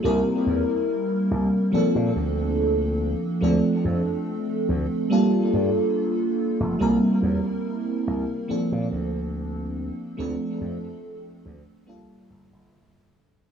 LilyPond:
<<
  \new Staff \with { instrumentName = "FM electric piano" } { \time 4/4 \key c \mixolydian \tempo 4 = 71 <g bes c' e' bes'>2 <f bes c' d' a'>2 | <f a c' d' a'>2 <g bes d' f' a'>2 | <g bes c' e' bes'>2 <f bes c' d' a'>2 | <f a c' d' a'>2 <g bes d' f' a'>2 | }
  \new Staff \with { instrumentName = "Slap bass" } { \clef bass \time 4/4 \key c \mixolydian c,16 r16 e,16 r8. c,16 r8 bes,16 d,4~ d,16 r16 | d,16 r16 f,16 r8. d,16 r8. g,16 r4 f,,16 | c,16 r16 e,16 r8. c,16 r8 bes,16 d,4~ d,16 r16 | d,16 r16 f,16 r8. d,16 r8. g,,16 g,,4~ g,,16 | }
>>